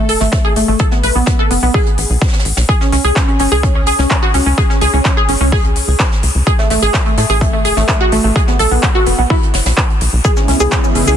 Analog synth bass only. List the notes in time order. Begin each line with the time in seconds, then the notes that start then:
Already playing: A1
0.09 E1
0.21 A1
0.56 A1
0.68 A1
1.03 B1
1.16 B1
1.51 F#1
1.63 B1
1.98 A1
2.10 B1
2.45 A1
2.57 B1
2.92 C#2
3.05 C#2
3.40 G#1
3.52 C#2
3.87 B1
3.99 C#2
4.34 C#2
4.46 C#2
4.81 C#2
4.93 C#2
5.29 G#1
5.41 C#2
5.76 B1
5.88 C#2
6.23 C#2
6.35 C#2
6.70 A1
6.82 A1
7.18 A2
7.30 A1
7.65 E1
7.77 A1
8.12 A1
8.24 A1
8.59 B1
8.71 B1
9.07 F#1
9.19 B1
9.54 F#1
9.66 B1
10.01 B1
10.13 B1
10.48 C#2
10.60 C#2
10.96 G#1
11.08 C#2